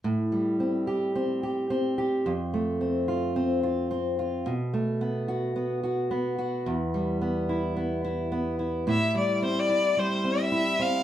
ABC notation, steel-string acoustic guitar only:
X:1
M:4/4
L:1/8
Q:"Swing 16ths" 1/4=109
K:Am
V:1 name="Steel-string acoustic guitar"
A,, G, C G C G C G | F,, A, C F C F C F | B,, A, B, ^F B, F B, F | E,, G, B, E B, E B, E |
[A,,E] G, C E G, C E C |]